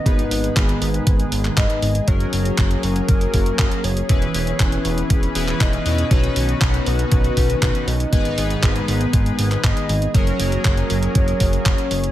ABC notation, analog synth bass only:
X:1
M:4/4
L:1/8
Q:1/4=119
K:G#m
V:1 name="Analog synth bass" clef=bass
G,,, G,,, G,,, G,,, G,,, G,,, G,,, G,,, | F,,, F,,, F,,, F,,, F,,, F,,, F,,, F,,, | E,,, E,,, E,,, E,,, E,,, E,,, E,,, E,, | B,,, B,,, B,,, B,,, B,,, B,,, B,,, B,,, |
G,,, G,,, G,,, G,,, G,,, G,,, G,,, G,,, | F,,, F,,, F,,, F,,, F,,, F,,, F,,, F,,, |]